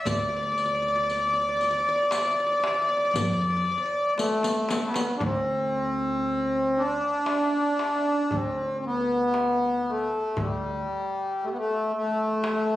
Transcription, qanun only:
0.06 0.12 D5 medium
0.12 0.19 D5 soft
0.19 0.28 D5 medium
0.28 0.36 D5 medium
0.36 0.42 D5 medium
0.43 0.51 D5 soft
0.52 0.59 D5 medium
0.59 0.65 D5 soft
0.66 0.74 D5 medium
0.75 0.82 D5 soft
0.82 0.88 D5 medium
0.88 0.95 D5 soft
0.96 1.03 D5 medium
1.03 1.11 D5 soft
1.11 1.19 D5 medium
1.19 1.27 D5 soft
1.27 1.33 D5 soft
1.33 1.41 D5 soft
1.41 1.49 D5 soft
1.49 1.56 D5 soft
1.56 1.64 D5 soft
1.64 1.70 D5 soft
1.71 1.80 D5 medium
1.80 1.88 D5 soft
1.89 1.95 D5 medium
1.96 2.03 D5 soft
2.03 2.11 D5 soft
2.12 2.17 D5 soft
2.17 2.25 D5 medium
2.25 2.31 D5 soft
2.31 2.39 D5 soft
2.40 2.46 D5 soft
2.47 2.52 D5 soft
2.52 2.59 D5 soft
2.60 2.67 D5 soft
2.67 2.74 D5 soft
2.74 2.81 D5 soft
2.82 2.88 D5 soft
2.89 2.96 D5 soft
2.97 3.05 D5 soft
3.05 3.11 D5 soft
3.11 3.17 D5 soft
3.18 3.24 D5 medium
3.25 3.33 D5 soft
3.33 3.40 D5 medium
3.41 3.50 D5 soft
3.50 3.56 D5 soft
3.57 3.64 D5 soft
3.65 3.71 D5 medium
3.71 3.77 D5 soft
3.78 3.85 D5 medium
3.86 4.84 D5 soft

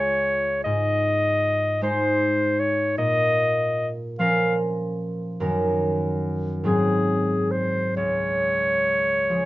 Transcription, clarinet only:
0.00 0.63 C#5 soft
0.64 1.80 D#5 medium
1.83 2.61 C5 medium
2.60 2.97 C#5 soft
2.98 3.89 D#5 medium
4.19 4.55 F5 soft
6.63 7.52 G#4 soft
7.51 7.95 C5 soft
7.96 9.45 C#5 soft

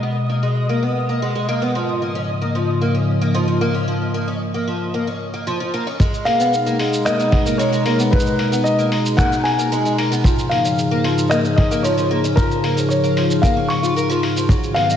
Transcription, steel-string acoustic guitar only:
0.03 0.15 B3 medium
0.29 0.42 A#3 medium
0.43 0.68 G#3 medium
0.69 0.81 A#3 medium
0.82 1.08 B3 medium
1.09 1.21 A#3 medium
1.22 1.34 G#3 medium
1.35 1.47 G#3 medium
1.49 1.61 A#3 medium
1.62 1.74 B3 medium
1.75 2.00 F3 medium
2.02 2.14 A#3 medium
2.15 2.28 C#4 medium
2.41 2.54 A#3 medium
2.55 2.80 F3 medium
2.81 2.93 A#3 medium
2.95 3.20 C#4 medium
3.21 3.34 A#3 medium
3.34 3.47 F3 medium
3.48 3.60 F3 medium
3.61 3.73 A#3 medium
3.74 3.86 C#4 medium
3.88 4.13 F3 medium
4.14 4.26 A#3 medium
4.28 4.40 C#4 medium
4.54 4.67 A#3 medium
4.67 4.93 F3 medium
4.94 5.06 A#3 medium
5.07 5.32 C#4 medium
5.34 5.46 A#3 medium
5.47 5.59 F3 medium
5.60 5.72 F3 medium
5.74 5.85 A#3 medium
5.87 5.99 C#4 medium
6.00 6.25 G#3 medium
6.26 6.38 A#3 medium
6.40 6.52 B3 medium
6.66 6.79 A#3 medium
6.80 7.05 G#3 medium
7.06 7.18 A#3 medium
7.19 7.45 B3 medium
7.46 7.59 A#3 medium
7.59 7.71 G#3 loud
7.72 7.84 G#3 medium
7.86 7.98 A#3 loud
7.99 8.11 B3 loud
8.12 8.38 G#3 medium
8.39 8.51 A#3 medium
8.52 8.65 B3 medium
8.79 8.91 A#3 medium
8.92 9.17 G#3 medium
9.19 9.31 A#3 medium
9.32 9.57 B3 medium
9.58 9.71 A#3 medium
9.72 9.84 G#3 loud
9.85 9.97 G#3 medium
9.98 10.10 A#3 loud
10.12 10.23 B3 loud
10.25 10.50 F3 medium
10.51 10.63 A#3 medium
10.65 10.77 C#4 medium
10.91 11.04 A#3 medium
11.05 11.30 F3 medium
11.31 11.43 A#3 medium
11.44 11.69 C#4 medium
11.71 11.83 A#3 medium
11.84 11.96 F3 loud
11.97 12.09 F3 medium
12.11 12.23 A#3 loud
12.24 12.36 C#4 loud
12.37 12.62 F3 medium
12.64 12.76 A#3 medium
12.77 12.90 C#4 medium
13.04 13.16 A#3 medium
13.17 13.42 F3 medium
13.43 13.55 A#3 medium
13.57 13.69 C#4 medium
13.83 13.95 F4 medium
13.96 14.08 A#4 loud
14.10 14.22 F3 medium
14.23 14.35 F4 medium
14.36 14.48 F3 medium
14.50 14.75 F#3 medium
14.76 14.88 B3 medium
14.90 14.97 D#4 medium

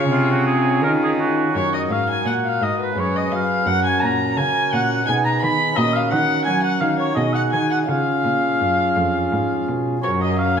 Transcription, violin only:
0.00 0.79 C#5 medium
1.54 1.71 C#5 medium
1.74 1.81 D#5 medium
1.91 2.08 F5 medium
2.10 2.26 G#5 medium
2.27 2.34 F#5 medium
2.45 2.65 F5 medium
2.63 2.80 D#5 medium
2.80 2.99 B4 medium
2.98 3.17 C#5 medium
3.16 3.33 D#5 medium
3.31 3.68 F5 medium
3.67 3.84 F#5 medium
3.84 4.03 G#5 medium
4.01 4.38 A#5 medium
4.37 4.74 G#5 medium
4.73 5.06 F#5 medium
5.07 5.14 G#5 medium
5.25 5.42 A#5 medium
5.42 5.78 B5 medium
5.76 5.97 D#5 medium
5.96 6.13 F5 medium
6.11 6.44 F#5 medium
6.45 6.63 G#5 medium
6.63 6.82 F#5 medium
6.81 6.99 F5 medium
6.99 7.19 C#5 medium
7.17 7.35 D#5 medium
7.35 7.42 F#5 medium
7.52 7.70 G#5 medium
7.71 7.78 F#5 medium
7.88 9.64 F5 medium
10.03 10.11 C#5 medium
10.22 10.38 D#5 medium
10.39 10.59 F5 medium

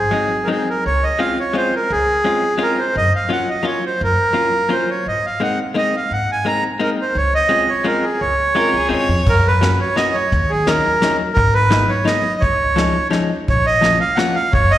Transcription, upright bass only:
0.86 0.97 C#2 medium
1.90 2.02 C#2 medium
2.96 3.07 F#2 medium
4.01 4.13 F#2 medium
5.06 5.18 G#2 medium
6.11 6.23 G#2 medium
7.15 7.27 C#2 medium
8.21 8.33 C#2 medium
8.73 8.89 C#2 medium
8.90 9.08 D#2 medium
9.08 9.24 F2 medium
9.27 9.73 F#2 medium
10.33 10.78 D#2 loud
11.37 11.82 G#1 medium
12.42 12.88 C#2 medium
13.49 13.94 A#1 medium
14.53 14.78 F#1 medium

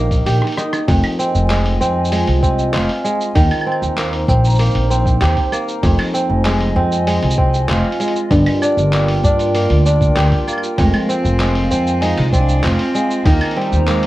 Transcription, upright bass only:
0.00 0.21 A#1 medium
0.27 0.39 A#1 medium
0.88 1.01 F1 loud
1.35 1.76 F1 medium
1.81 2.22 F2 medium
2.27 2.69 C2 medium
2.74 2.86 F1 medium
3.36 3.48 D#2 loud
3.82 4.23 D#2 medium
4.28 4.70 A#1 medium
4.75 5.16 A#1 medium
5.21 5.33 D#2 medium
5.83 5.95 F1 loud
6.30 6.71 F1 medium
6.76 7.17 F2 loud
7.22 7.64 C2 medium
7.69 7.81 F1 medium
8.31 8.43 G1 loud
8.77 9.18 G1 medium
9.24 9.65 G2 medium
9.70 10.11 D2 medium
10.16 10.28 D2 medium
10.78 10.90 F1 loud
11.25 11.66 F1 medium
11.71 12.12 F2 medium
12.18 12.59 C2 medium
12.64 12.76 F1 medium
13.25 13.38 D#2 loud
13.72 14.06 D#2 medium

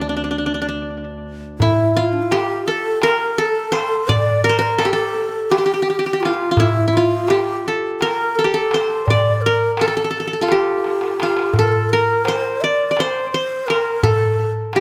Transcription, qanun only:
0.00 0.09 D4 soft
0.00 0.14 E4 medium
0.09 0.16 D4 soft
0.17 0.23 D4 soft
0.24 0.30 D4 soft
0.31 0.38 D4 soft
0.38 0.46 D4 soft
0.46 0.54 D4 soft
0.54 0.61 D4 soft
0.62 0.68 D4 medium
0.69 2.18 D4 soft
1.62 2.03 E4 medium
1.97 3.31 F4 medium
2.32 3.57 G4 medium
2.68 3.09 A4 medium
3.03 3.44 A#4 medium
3.38 4.50 A4 medium
3.72 4.49 C5 medium
4.09 5.07 D5 medium
4.44 4.58 A#4 medium
4.49 5.55 C5 medium
4.59 4.84 A#4 medium
4.78 4.92 A4 medium
4.85 5.51 G4 medium
4.93 6.10 A4 medium
5.51 5.58 G4 medium
5.58 5.65 G4 medium
5.66 5.73 G4 medium
5.74 5.82 G4 medium
5.82 5.89 G4 medium
5.90 5.99 G4 medium
5.99 6.06 G4 medium
6.06 6.13 G4 medium
6.13 7.30 G4 medium
6.25 6.51 F4 medium
6.51 6.66 F4 medium
6.60 6.87 E4 medium
6.88 7.03 E4 medium
6.97 8.32 F4 medium
7.30 8.44 G4 medium
7.68 8.08 A4 medium
8.02 8.45 A#4 loud
8.39 8.53 A4 medium
8.44 9.70 G4 medium
8.54 9.52 A4 medium
8.74 9.80 C5 medium
9.10 10.09 D5 medium
9.46 9.87 A#4 medium
9.81 9.87 A4 medium
9.88 9.96 A4 medium
9.97 10.04 A4 medium
10.04 10.10 A4 medium
10.11 10.19 A4 medium
10.20 10.27 A4 soft
10.27 10.33 A4 medium
10.33 10.41 A4 medium
10.41 11.22 F4 medium
10.41 11.58 A4 medium
10.52 11.77 G4 medium
11.23 12.58 F4 medium
11.59 11.99 A4 medium
11.93 13.06 A#4 medium
12.28 13.00 C5 medium
12.64 12.91 D5 medium
12.91 13.89 D5 medium
13.00 13.34 C5 medium
13.34 14.40 C5 medium
13.70 14.09 A#4 medium
14.03 14.80 A4 medium
14.76 14.80 G4 medium

